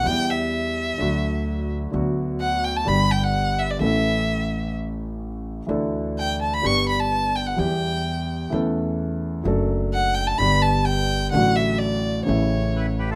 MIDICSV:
0, 0, Header, 1, 5, 480
1, 0, Start_track
1, 0, Key_signature, 2, "major"
1, 0, Tempo, 470588
1, 54, Time_signature, 4, 2, 24, 8
1, 13415, End_track
2, 0, Start_track
2, 0, Title_t, "Violin"
2, 0, Program_c, 0, 40
2, 66, Note_on_c, 0, 79, 102
2, 305, Note_on_c, 0, 76, 85
2, 320, Note_off_c, 0, 79, 0
2, 1735, Note_off_c, 0, 76, 0
2, 2455, Note_on_c, 0, 78, 94
2, 2696, Note_on_c, 0, 79, 84
2, 2712, Note_off_c, 0, 78, 0
2, 2820, Note_on_c, 0, 81, 85
2, 2835, Note_off_c, 0, 79, 0
2, 2939, Note_on_c, 0, 83, 93
2, 2954, Note_off_c, 0, 81, 0
2, 3176, Note_on_c, 0, 79, 81
2, 3191, Note_off_c, 0, 83, 0
2, 3299, Note_on_c, 0, 78, 88
2, 3314, Note_off_c, 0, 79, 0
2, 3656, Note_on_c, 0, 76, 79
2, 3672, Note_off_c, 0, 78, 0
2, 3780, Note_on_c, 0, 74, 74
2, 3795, Note_off_c, 0, 76, 0
2, 3888, Note_off_c, 0, 74, 0
2, 3894, Note_on_c, 0, 76, 89
2, 4810, Note_off_c, 0, 76, 0
2, 6308, Note_on_c, 0, 79, 90
2, 6524, Note_off_c, 0, 79, 0
2, 6549, Note_on_c, 0, 81, 72
2, 6667, Note_on_c, 0, 83, 86
2, 6683, Note_off_c, 0, 81, 0
2, 6793, Note_on_c, 0, 85, 99
2, 6809, Note_off_c, 0, 83, 0
2, 7023, Note_off_c, 0, 85, 0
2, 7028, Note_on_c, 0, 83, 81
2, 7141, Note_on_c, 0, 81, 92
2, 7157, Note_off_c, 0, 83, 0
2, 7501, Note_on_c, 0, 79, 78
2, 7516, Note_off_c, 0, 81, 0
2, 7613, Note_on_c, 0, 78, 73
2, 7628, Note_off_c, 0, 79, 0
2, 7741, Note_on_c, 0, 79, 84
2, 7756, Note_off_c, 0, 78, 0
2, 8696, Note_off_c, 0, 79, 0
2, 10134, Note_on_c, 0, 78, 94
2, 10349, Note_on_c, 0, 79, 88
2, 10364, Note_off_c, 0, 78, 0
2, 10479, Note_on_c, 0, 81, 86
2, 10494, Note_off_c, 0, 79, 0
2, 10588, Note_on_c, 0, 83, 98
2, 10603, Note_off_c, 0, 81, 0
2, 10831, Note_on_c, 0, 81, 85
2, 10846, Note_off_c, 0, 83, 0
2, 11063, Note_on_c, 0, 79, 96
2, 11078, Note_off_c, 0, 81, 0
2, 11540, Note_off_c, 0, 79, 0
2, 11546, Note_on_c, 0, 78, 94
2, 11788, Note_on_c, 0, 76, 83
2, 11803, Note_off_c, 0, 78, 0
2, 12022, Note_on_c, 0, 74, 90
2, 12037, Note_off_c, 0, 76, 0
2, 12497, Note_off_c, 0, 74, 0
2, 12503, Note_on_c, 0, 73, 70
2, 13199, Note_off_c, 0, 73, 0
2, 13415, End_track
3, 0, Start_track
3, 0, Title_t, "Bandoneon"
3, 0, Program_c, 1, 23
3, 13011, Note_on_c, 1, 71, 73
3, 13016, Note_on_c, 1, 64, 61
3, 13120, Note_off_c, 1, 71, 0
3, 13123, Note_off_c, 1, 64, 0
3, 13247, Note_on_c, 1, 71, 67
3, 13254, Note_on_c, 1, 67, 52
3, 13361, Note_off_c, 1, 71, 0
3, 13365, Note_off_c, 1, 67, 0
3, 13368, Note_on_c, 1, 69, 81
3, 13381, Note_on_c, 1, 65, 62
3, 13415, Note_off_c, 1, 65, 0
3, 13415, Note_off_c, 1, 69, 0
3, 13415, End_track
4, 0, Start_track
4, 0, Title_t, "Grand piano"
4, 0, Program_c, 2, 0
4, 32, Note_on_c, 2, 52, 55
4, 47, Note_on_c, 2, 55, 50
4, 51, Note_on_c, 2, 40, 61
4, 59, Note_on_c, 2, 59, 48
4, 71, Note_on_c, 2, 67, 55
4, 960, Note_off_c, 2, 55, 0
4, 961, Note_off_c, 2, 52, 0
4, 962, Note_off_c, 2, 40, 0
4, 966, Note_off_c, 2, 59, 0
4, 972, Note_off_c, 2, 67, 0
4, 999, Note_on_c, 2, 50, 58
4, 1010, Note_on_c, 2, 54, 51
4, 1016, Note_on_c, 2, 38, 63
4, 1023, Note_on_c, 2, 57, 54
4, 1038, Note_on_c, 2, 66, 59
4, 1920, Note_off_c, 2, 54, 0
4, 1921, Note_off_c, 2, 50, 0
4, 1923, Note_off_c, 2, 38, 0
4, 1926, Note_off_c, 2, 57, 0
4, 1934, Note_off_c, 2, 66, 0
4, 1954, Note_on_c, 2, 50, 59
4, 1964, Note_on_c, 2, 54, 49
4, 1973, Note_on_c, 2, 38, 63
4, 1982, Note_on_c, 2, 59, 44
4, 1994, Note_on_c, 2, 66, 61
4, 2877, Note_off_c, 2, 54, 0
4, 2881, Note_off_c, 2, 38, 0
4, 2882, Note_off_c, 2, 50, 0
4, 2886, Note_off_c, 2, 59, 0
4, 2892, Note_off_c, 2, 66, 0
4, 2905, Note_on_c, 2, 50, 56
4, 2918, Note_on_c, 2, 55, 53
4, 2924, Note_on_c, 2, 31, 67
4, 2924, Note_on_c, 2, 43, 67
4, 2932, Note_on_c, 2, 59, 47
4, 2945, Note_on_c, 2, 67, 61
4, 3826, Note_off_c, 2, 50, 0
4, 3833, Note_off_c, 2, 55, 0
4, 3836, Note_off_c, 2, 31, 0
4, 3836, Note_off_c, 2, 43, 0
4, 3840, Note_off_c, 2, 59, 0
4, 3846, Note_off_c, 2, 67, 0
4, 3866, Note_on_c, 2, 52, 52
4, 3876, Note_on_c, 2, 57, 48
4, 3884, Note_on_c, 2, 45, 65
4, 3885, Note_on_c, 2, 33, 62
4, 3889, Note_on_c, 2, 61, 51
4, 3907, Note_on_c, 2, 69, 58
4, 5704, Note_off_c, 2, 52, 0
4, 5710, Note_off_c, 2, 57, 0
4, 5713, Note_off_c, 2, 45, 0
4, 5714, Note_off_c, 2, 33, 0
4, 5716, Note_off_c, 2, 61, 0
4, 5725, Note_off_c, 2, 69, 0
4, 5779, Note_on_c, 2, 52, 57
4, 5794, Note_on_c, 2, 57, 49
4, 5798, Note_on_c, 2, 50, 66
4, 5803, Note_on_c, 2, 38, 59
4, 5807, Note_on_c, 2, 62, 48
4, 5820, Note_on_c, 2, 69, 59
4, 6709, Note_off_c, 2, 52, 0
4, 6716, Note_off_c, 2, 57, 0
4, 6719, Note_off_c, 2, 50, 0
4, 6721, Note_off_c, 2, 38, 0
4, 6723, Note_off_c, 2, 62, 0
4, 6730, Note_off_c, 2, 69, 0
4, 6749, Note_on_c, 2, 50, 56
4, 6762, Note_on_c, 2, 55, 48
4, 6766, Note_on_c, 2, 31, 63
4, 6772, Note_on_c, 2, 43, 63
4, 6776, Note_on_c, 2, 59, 52
4, 6788, Note_on_c, 2, 67, 60
4, 7673, Note_off_c, 2, 50, 0
4, 7679, Note_off_c, 2, 55, 0
4, 7681, Note_off_c, 2, 31, 0
4, 7684, Note_off_c, 2, 43, 0
4, 7686, Note_off_c, 2, 59, 0
4, 7692, Note_off_c, 2, 67, 0
4, 7709, Note_on_c, 2, 52, 51
4, 7724, Note_off_c, 2, 52, 0
4, 7724, Note_on_c, 2, 55, 46
4, 7729, Note_on_c, 2, 40, 62
4, 7733, Note_on_c, 2, 52, 61
4, 7743, Note_on_c, 2, 59, 49
4, 7749, Note_on_c, 2, 67, 59
4, 8640, Note_off_c, 2, 55, 0
4, 8642, Note_off_c, 2, 40, 0
4, 8644, Note_off_c, 2, 52, 0
4, 8649, Note_off_c, 2, 59, 0
4, 8652, Note_off_c, 2, 67, 0
4, 8671, Note_on_c, 2, 52, 65
4, 8682, Note_on_c, 2, 57, 53
4, 8693, Note_on_c, 2, 40, 67
4, 8698, Note_on_c, 2, 61, 56
4, 8713, Note_on_c, 2, 69, 63
4, 9597, Note_off_c, 2, 57, 0
4, 9600, Note_off_c, 2, 52, 0
4, 9602, Note_off_c, 2, 40, 0
4, 9605, Note_off_c, 2, 61, 0
4, 9612, Note_off_c, 2, 69, 0
4, 9623, Note_on_c, 2, 54, 59
4, 9636, Note_on_c, 2, 57, 49
4, 9638, Note_off_c, 2, 54, 0
4, 9639, Note_on_c, 2, 42, 62
4, 9644, Note_on_c, 2, 54, 67
4, 9650, Note_on_c, 2, 62, 49
4, 9664, Note_on_c, 2, 69, 65
4, 10552, Note_off_c, 2, 57, 0
4, 10554, Note_off_c, 2, 42, 0
4, 10556, Note_off_c, 2, 54, 0
4, 10559, Note_off_c, 2, 62, 0
4, 10566, Note_off_c, 2, 69, 0
4, 10590, Note_on_c, 2, 50, 60
4, 10601, Note_on_c, 2, 55, 52
4, 10608, Note_on_c, 2, 43, 70
4, 10612, Note_on_c, 2, 31, 65
4, 10614, Note_on_c, 2, 59, 52
4, 10631, Note_on_c, 2, 67, 64
4, 11509, Note_off_c, 2, 50, 0
4, 11514, Note_off_c, 2, 55, 0
4, 11518, Note_off_c, 2, 43, 0
4, 11519, Note_off_c, 2, 31, 0
4, 11520, Note_off_c, 2, 59, 0
4, 11529, Note_off_c, 2, 67, 0
4, 11545, Note_on_c, 2, 50, 57
4, 11559, Note_on_c, 2, 54, 50
4, 11566, Note_on_c, 2, 45, 64
4, 11567, Note_on_c, 2, 33, 64
4, 11572, Note_on_c, 2, 57, 51
4, 11588, Note_on_c, 2, 66, 58
4, 12468, Note_off_c, 2, 50, 0
4, 12475, Note_off_c, 2, 54, 0
4, 12479, Note_off_c, 2, 45, 0
4, 12480, Note_off_c, 2, 33, 0
4, 12482, Note_off_c, 2, 57, 0
4, 12490, Note_off_c, 2, 66, 0
4, 12496, Note_on_c, 2, 49, 58
4, 12512, Note_on_c, 2, 52, 50
4, 12515, Note_on_c, 2, 33, 61
4, 12517, Note_on_c, 2, 45, 63
4, 12524, Note_on_c, 2, 57, 50
4, 12539, Note_on_c, 2, 64, 61
4, 13415, Note_off_c, 2, 33, 0
4, 13415, Note_off_c, 2, 45, 0
4, 13415, Note_off_c, 2, 49, 0
4, 13415, Note_off_c, 2, 52, 0
4, 13415, Note_off_c, 2, 57, 0
4, 13415, Note_off_c, 2, 64, 0
4, 13415, End_track
5, 0, Start_track
5, 0, Title_t, "Upright bass"
5, 0, Program_c, 3, 32
5, 59, Note_on_c, 3, 40, 73
5, 966, Note_off_c, 3, 40, 0
5, 1017, Note_on_c, 3, 38, 73
5, 1923, Note_off_c, 3, 38, 0
5, 1976, Note_on_c, 3, 38, 69
5, 2883, Note_off_c, 3, 38, 0
5, 2932, Note_on_c, 3, 31, 75
5, 3840, Note_off_c, 3, 31, 0
5, 3883, Note_on_c, 3, 33, 69
5, 5713, Note_off_c, 3, 33, 0
5, 5802, Note_on_c, 3, 38, 70
5, 6721, Note_off_c, 3, 38, 0
5, 6775, Note_on_c, 3, 31, 76
5, 7686, Note_off_c, 3, 31, 0
5, 7743, Note_on_c, 3, 40, 70
5, 8649, Note_off_c, 3, 40, 0
5, 8693, Note_on_c, 3, 40, 73
5, 9602, Note_off_c, 3, 40, 0
5, 9642, Note_on_c, 3, 30, 73
5, 10555, Note_off_c, 3, 30, 0
5, 10607, Note_on_c, 3, 31, 75
5, 11517, Note_off_c, 3, 31, 0
5, 11566, Note_on_c, 3, 33, 75
5, 12479, Note_off_c, 3, 33, 0
5, 12532, Note_on_c, 3, 33, 76
5, 13415, Note_off_c, 3, 33, 0
5, 13415, End_track
0, 0, End_of_file